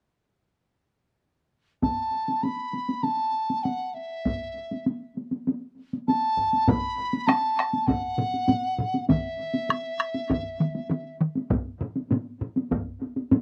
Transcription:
1.82 dizi A5, taiko, taiko high
2.28 taiko high
2.43 dizi B5, taiko high
2.73 taiko high
2.89 taiko high
3.03 dizi A5, taiko high
3.50 taiko high
3.63 dizi F#5, taiko high
3.87 dizi F#5
3.94 dizi E5
4.25 taiko, taiko high
4.71 taiko high
4.86 taiko high
5.17 taiko high
5.32 taiko high
5.47 taiko high
5.93 taiko high
6.07 dizi A5, taiko high
6.38 taiko
6.53 taiko high
6.68 dizi B5, taiko, taiko low-mid, taiko high
7.13 taiko high
7.26 dizi A5, taiko rim, taiko high
7.59 taiko rim
7.73 taiko high
7.86 dizi F#5, taiko, taiko low-mid, taiko high
8.18 taiko low-mid, taiko high
8.34 taiko high
8.48 taiko low-mid, taiko high
8.79 taiko low-mid
8.94 taiko high
9.08 dizi E5, taiko, taiko mid, taiko high
9.54 taiko high
9.69 taiko rim, taiko high
10.00 taiko rim
10.14 taiko high
10.30 taiko, taiko mid, taiko high
10.60 taiko mid, taiko high
10.75 taiko high
10.90 taiko mid, taiko high
11.21 taiko mid
11.35 taiko high
11.50 taiko, taiko low-mid, taiko high
11.81 taiko low-mid
11.96 taiko high
12.11 taiko low-mid, taiko high
12.41 taiko low-mid
12.56 taiko high
12.71 taiko, taiko high
13.02 taiko high
13.16 taiko high
13.31 taiko low-mid, taiko high

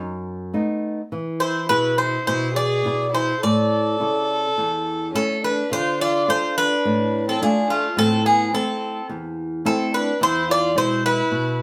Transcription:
Already playing: nylon-string guitar F#2
0.54 nylon-string guitar A3 B3 D#4
1.12 nylon-string guitar E3
1.40 violin E4, bouzouki C5
1.69 nylon-string guitar B2 E4 G#4, violin E4, bouzouki B4
1.98 violin E4, bouzouki C5
2.26 nylon-string guitar B2, violin E4, bouzouki C5
2.55 violin G#4, bouzouki D5
2.85 nylon-string guitar B2 E4 G#4
3.13 violin E4, bouzouki C5
3.41 nylon-string guitar A2, violin A4, bouzouki D5
4.00 nylon-string guitar C#3 E4 A4
4.58 nylon-string guitar E2
5.14 nylon-string guitar A3 E4 A4, violin C#4, bouzouki A4
5.44 violin D4, bouzouki B4
5.71 nylon-string guitar D3, violin F4, bouzouki C5
6.01 violin F4, bouzouki D5
6.28 nylon-string guitar D4 F4 A4, violin F4, bouzouki C5
6.58 violin D4, bouzouki B4
6.85 nylon-string guitar A2
7.28 violin C4, bouzouki A4
7.41 nylon-string guitar A3 D4 F4, violin D4, bouzouki G#4
7.70 violin A3, bouzouki F4
7.97 nylon-string guitar A2, violin C4, bouzouki A4
8.26 violin B3, bouzouki G#4
8.53 nylon-string guitar A3 C4 E4, violin C4, bouzouki A4
9.09 nylon-string guitar E2
9.65 nylon-string guitar A3 C4 E4, violin C4, bouzouki A4
9.94 violin D4, bouzouki B4
10.21 nylon-string guitar E2, violin E4, bouzouki C5
10.51 violin F4, bouzouki D5
10.75 nylon-string guitar B2 G#3 E4, violin E4, bouzouki C5
11.06 violin E4, bouzouki B4
11.31 nylon-string guitar B2

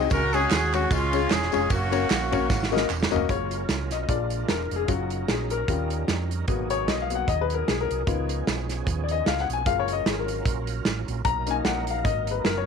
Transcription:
Already playing: tonewheel organ C4
0.10 fingered electric bass C#2, upright piano C#3, tonewheel organ G#3 C#4 F#4, horn section C#4 F#4 A#4, kick, ride, tambourine
0.33 upright piano G#3 C#4 F#4 G#4 C#5, horn section C#4 G#4, ride, tambourine
0.50 fingered electric bass D#2, snare, clap, ride, tambourine
0.73 upright piano G#3 C#4 F#4 G#4 C#5, horn section F#4, clap, ride, tambourine
0.90 fingered electric bass C#2, upright piano C#3, tonewheel organ G#3 C#4 D#4, horn section G#3 C#4 F4, kick, ride, tambourine
0.96 tonewheel organ F4
1.13 upright piano G#3 C#4 F4 G#4 C#5, ride, tambourine
1.30 fingered electric bass E1, horn section G#4, snare, clap, ride, tambourine
1.42 snare
1.52 fingered electric bass F1, upright piano G#3 C#4 F4 G#4 C#5, horn section G#4, ride, tambourine
1.70 fingered electric bass F#1, tonewheel organ A#3 C#4 F#4, horn section A#3 C#4 F#4, kick, ride, tambourine
1.91 upright piano A#3 C#4 F#4 A#4 C#5, ride, tambourine
2.10 fingered electric bass A#1, snare, clap, ride, tambourine
2.31 upright piano A#3 C#4 F#4 A#4 C#5, kick, ride, tambourine
2.50 fingered electric bass G#1, kick, snare, tambourine
2.63 snare
2.71 upright piano A#3 C#4 F#4 A#4 D#5, tambourine
2.77 snare
2.90 fingered electric bass E1, clap, tambourine
3.03 snare
3.11 fingered electric bass F1, upright piano A#3 C#4 F#4 A#4 D#5, tambourine
3.16 floor tom
3.28 fingered electric bass F#1, tonewheel organ F#3 C#4 F4 A#4, upright piano G#3 A#3 F4 C#5, kick, closed hi-hat
3.51 closed hi-hat
3.69 fingered electric bass C#2, snare, closed hi-hat
3.91 fingered electric bass B1, upright piano D#5, snare, closed hi-hat
4.03 upright piano D#5
4.08 fingered electric bass A#1, upright piano G#3 D4 F4 D5, tonewheel organ G#3 D4 F4 A#4, kick, closed hi-hat
4.30 closed hi-hat
4.48 fingered electric bass E1, upright piano A#4, snare, closed hi-hat
4.71 fingered electric bass F1, closed hi-hat
4.76 upright piano G#4
4.87 fingered electric bass F#1, upright piano F#3 C#4 F4 F#4, tonewheel organ F#3 C#4 D#4 A#4, kick, closed hi-hat
5.10 closed hi-hat
5.28 fingered electric bass A#1, upright piano G#4, snare, closed hi-hat
5.50 upright piano A#4, closed hi-hat
5.68 fingered electric bass D#2, tonewheel organ G3 C#4 D#4 A#4, upright piano G3 C#4 F4, kick, closed hi-hat
5.90 closed hi-hat
6.08 fingered electric bass F2, snare, closed hi-hat
6.31 closed hi-hat
6.47 fingered electric bass G#1, tonewheel organ F#3 A#3 D#4 G#4, upright piano A#3 B3 F#4, kick, closed hi-hat
6.52 tonewheel organ B2
6.70 upright piano C#5, closed hi-hat
6.88 fingered electric bass B1, upright piano D#5, snare, closed hi-hat
7.02 upright piano F5
7.10 upright piano A#3 B3 F#4, closed hi-hat
7.15 upright piano F#5
7.28 fingered electric bass D#2, upright piano D#5, kick, closed hi-hat
7.41 upright piano B4
7.50 closed hi-hat
7.54 upright piano A#4
7.68 fingered electric bass B1, upright piano G#4, snare, closed hi-hat
7.81 upright piano A#4
7.90 fingered electric bass C2, closed hi-hat
8.07 fingered electric bass C#2, tonewheel organ F3 B3 C#4 G#4, upright piano B3 D#4 F4, kick, closed hi-hat
8.29 closed hi-hat
8.47 fingered electric bass B1, snare, closed hi-hat
8.69 snare, closed hi-hat
8.87 fingered electric bass D#2, kick, closed hi-hat
9.04 upright piano D5
9.09 upright piano D#5, closed hi-hat
9.26 fingered electric bass C#2, upright piano F5, snare, closed hi-hat
9.38 upright piano F#5, snare
9.49 fingered electric bass B1, closed hi-hat
9.53 upright piano G#5
9.65 fingered electric bass F#1, tonewheel organ F#3 C#4 F4 A#4, upright piano G#3 A#3 F4 F5, kick, closed hi-hat
9.79 upright piano C#5
9.88 closed hi-hat
9.93 upright piano D#5
10.06 fingered electric bass G#1, upright piano G#4, snare, closed hi-hat
10.19 upright piano A#4
10.28 closed hi-hat
10.46 fingered electric bass A#1, kick, closed hi-hat
10.67 closed hi-hat
10.85 fingered electric bass A1, snare, closed hi-hat
11.08 fingered electric bass A#1, closed hi-hat
11.25 fingered electric bass B1, tonewheel organ F#3 A#3 D#4 A#4, upright piano A#5, kick, closed hi-hat
11.46 upright piano A#3 C#4 D#4, closed hi-hat
11.51 upright piano G#5
11.65 fingered electric bass A#1, upright piano F#5, snare, closed hi-hat
11.87 upright piano F5, closed hi-hat
12.04 fingered electric bass G#1, upright piano D#5, kick, closed hi-hat
12.27 upright piano B4, closed hi-hat
12.44 fingered electric bass F#1, upright piano A#4, snare, closed hi-hat
12.58 upright piano C#5

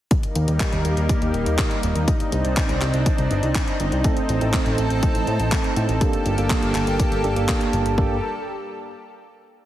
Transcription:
0.11 analog synth pad G3 A#3 D#4, kick, closed hi-hat
0.23 closed hi-hat
0.35 analog synth bass D#2, closed hi-hat
0.48 analog synth bass D#2, closed hi-hat
0.60 kick, clap, closed hi-hat
0.72 analog synth bass D#2, closed hi-hat
0.85 analog synth bass D#2, closed hi-hat
0.97 analog synth bass D#2, closed hi-hat
1.09 kick, closed hi-hat
1.22 analog synth bass D#2, closed hi-hat
1.34 analog synth bass D#1, closed hi-hat
1.46 analog synth bass D#2, closed hi-hat
1.59 kick, clap, closed hi-hat
1.71 closed hi-hat
1.83 analog synth bass D#1, closed hi-hat
1.95 analog synth bass D#2, closed hi-hat
2.08 analog synth pad C4 D4, kick, closed hi-hat
2.20 closed hi-hat
2.32 analog synth bass C2, closed hi-hat
2.45 analog synth bass C2, closed hi-hat
2.57 kick, clap, closed hi-hat
2.69 analog synth bass C2, closed hi-hat
2.82 analog synth bass C2, clap, closed hi-hat
2.94 analog synth bass C2, closed hi-hat
3.06 kick, closed hi-hat
3.18 analog synth bass C2, closed hi-hat
3.31 analog synth bass G1, closed hi-hat
3.43 analog synth bass C2, closed hi-hat
3.55 kick, clap, closed hi-hat
3.68 closed hi-hat
3.80 analog synth bass G1, closed hi-hat
3.92 analog synth bass C2, closed hi-hat
4.04 tine electric piano A3 C4 D#4 A4, analog synth pad C4 A4, kick, closed hi-hat
4.17 closed hi-hat
4.29 analog synth bass A1, closed hi-hat
4.41 analog synth bass A1, tine electric piano A3 C4 D#4 A4, closed hi-hat
4.54 kick, clap, closed hi-hat
4.66 analog synth bass A1, closed hi-hat
4.78 analog synth bass A1, closed hi-hat
4.90 analog synth bass A1, closed hi-hat
5.03 kick, closed hi-hat
5.15 analog synth bass A1, closed hi-hat
5.27 analog synth bass A2, closed hi-hat
5.40 analog synth bass A1, closed hi-hat
5.52 kick, clap, closed hi-hat
5.64 closed hi-hat
5.76 analog synth bass A2, closed hi-hat
5.89 analog synth bass A1, closed hi-hat
6.01 analog synth pad A#3 G4 A4, tine electric piano A#3 D4 G4 A4, kick, closed hi-hat
6.13 closed hi-hat
6.26 analog synth bass G1, closed hi-hat
6.38 analog synth bass G1, tine electric piano A#3 D4 G4 A4, closed hi-hat
6.50 kick, clap, closed hi-hat
6.63 analog synth bass G1, closed hi-hat
6.75 analog synth bass G1, clap, closed hi-hat
6.87 analog synth bass G1, closed hi-hat
6.99 kick, closed hi-hat
7.12 analog synth bass G1, closed hi-hat
7.24 analog synth bass G1, tine electric piano A#3 D4 G4 A4, closed hi-hat
7.36 analog synth bass G1, tine electric piano A#3 D4 G4 A4, closed hi-hat
7.49 kick, clap, closed hi-hat
7.61 closed hi-hat
7.73 analog synth bass G1, closed hi-hat
7.85 analog synth bass G1, closed hi-hat
7.98 analog synth bass G1, analog synth pad G3 G4 A4 A#4 D5, tine electric piano A#3 D4 G4 A4, kick

